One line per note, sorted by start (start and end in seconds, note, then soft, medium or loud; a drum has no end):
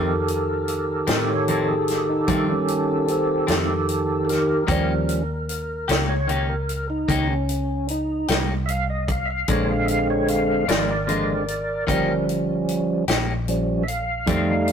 0.00 0.11 F2 medium
0.00 1.04 F2 medium
0.00 0.11 D#3 medium
0.00 4.64 D#3 medium
0.00 0.11 A3 medium
0.00 0.11 C4 medium
0.00 4.64 G4 soft
0.00 4.24 A4 medium
0.00 1.24 A#4 loud
0.28 closed hi-hat medium
0.68 closed hi-hat medium
1.07 2.24 A2 medium
1.07 1.32 D#3 soft
1.07 1.32 A3 soft
1.07 1.31 C4 medium
1.07 snare loud
1.07 closed hi-hat medium
1.30 1.67 C#5 medium
1.48 1.72 F2 medium
1.48 1.72 D#3 medium
1.48 1.73 A3 medium
1.48 1.73 C4 medium
1.48 closed hi-hat medium
1.69 2.07 G#4 medium
1.88 snare soft
1.88 closed hi-hat medium
2.09 2.47 D#4 medium
2.28 2.52 F2 medium
2.28 3.44 G2 medium
2.28 2.52 D#3 medium
2.28 2.52 A3 medium
2.28 2.53 C4 medium
2.28 kick medium
2.28 closed hi-hat medium
2.50 3.07 C#4 medium
2.68 closed hi-hat medium
3.08 3.48 C4 medium
3.08 closed hi-hat medium
3.47 4.65 F2 medium
3.47 3.73 D#3 soft
3.47 3.72 A3 soft
3.47 3.71 C4 soft
3.47 snare loud
3.47 closed hi-hat medium
3.89 closed hi-hat medium
4.25 4.29 A4 medium
4.29 6.05 A#4 loud
4.29 snare soft
4.29 closed hi-hat medium
4.67 5.85 D#2 medium
4.67 4.92 D#3 medium
4.67 5.22 F3 medium
4.67 5.22 G3 soft
4.67 4.92 A#3 medium
4.67 4.92 C#4 medium
4.67 4.92 G4 medium
4.67 kick loud
4.67 closed hi-hat medium
4.71 5.23 C#4 medium
5.09 closed hi-hat medium
5.49 closed hi-hat medium
5.88 7.05 C#2 medium
5.88 6.13 A#3 soft
5.88 6.13 C#4 medium
5.88 6.12 G4 soft
5.88 snare loud
5.88 closed hi-hat medium
6.09 6.47 C#5 medium
6.27 6.52 D#3 medium
6.27 6.53 A#3 medium
6.27 6.53 C#4 medium
6.27 6.53 G4 medium
6.27 closed hi-hat medium
6.49 6.87 A#4 medium
6.69 closed hi-hat medium
6.90 7.28 D#4 medium
7.08 8.25 C#2 medium
7.08 7.32 D#3 medium
7.08 7.33 A#3 medium
7.08 7.33 C#4 medium
7.08 7.33 G4 medium
7.08 kick medium
7.08 closed hi-hat medium
7.30 7.87 C#4 medium
7.49 closed hi-hat medium
7.88 8.28 D#4 loud
7.88 closed hi-hat medium
8.28 9.45 C2 loud
8.28 8.53 A#3 soft
8.28 8.53 C#4 soft
8.28 8.52 G4 medium
8.28 snare loud
8.28 closed hi-hat medium
8.66 8.70 E5 medium
8.66 closed hi-hat medium
8.70 8.88 F5 medium
8.90 9.08 D#5 medium
9.08 9.29 F5 medium
9.08 kick medium
9.08 closed hi-hat medium
9.26 9.30 E5 medium
9.31 9.48 F5 medium
9.48 10.64 A#1 medium
9.48 9.72 A#2 medium
9.48 10.64 D3 medium
9.48 9.73 F3 medium
9.48 9.73 G#3 medium
9.48 10.65 G#3 medium
9.48 10.65 C4 medium
9.48 9.73 D4 medium
9.48 9.68 C#5 medium
9.48 kick loud
9.48 closed hi-hat medium
9.71 9.88 F5 medium
9.85 9.89 E5 medium
9.85 closed hi-hat medium
9.90 10.08 F5 loud
10.10 10.28 C#5 medium
10.28 10.67 F5 medium
10.28 closed hi-hat medium
10.68 11.84 G#1 medium
10.68 10.93 F3 soft
10.68 10.93 G#3 soft
10.68 10.92 D4 medium
10.68 12.24 A#4 medium
10.68 11.85 D5 medium
10.68 snare loud
10.68 closed hi-hat medium
11.07 11.31 A#2 medium
11.07 11.44 D3 soft
11.07 11.32 F3 medium
11.07 11.44 G#3 soft
11.07 11.33 G#3 medium
11.07 11.44 C4 medium
11.07 11.33 D4 medium
11.07 closed hi-hat medium
11.48 closed hi-hat medium
11.87 13.04 G1 medium
11.87 12.11 D#3 medium
11.87 13.04 F3 medium
11.87 13.04 G3 medium
11.87 12.12 A#3 medium
11.87 12.12 C#4 medium
11.87 13.05 C#4 medium
11.87 12.12 G4 medium
11.87 kick medium
11.87 closed hi-hat medium
12.29 closed hi-hat medium
12.69 closed hi-hat medium
13.08 14.24 A#1 medium
13.08 13.33 A#3 medium
13.08 13.32 C#4 medium
13.08 13.32 G4 medium
13.08 snare loud
13.08 closed hi-hat medium
13.48 13.84 F3 soft
13.48 13.84 G3 soft
13.48 13.84 C#4 soft
13.48 closed hi-hat medium
13.83 13.88 E5 medium
13.88 14.72 F5 loud
13.88 closed hi-hat medium
14.26 14.72 F2 medium
14.26 14.52 F2 medium
14.26 14.52 D#3 medium
14.26 14.72 G3 medium
14.26 14.72 A3 soft
14.26 14.52 A3 medium
14.26 14.52 C4 medium
14.26 14.72 D#4 medium
14.26 kick loud
14.26 closed hi-hat medium
14.68 closed hi-hat medium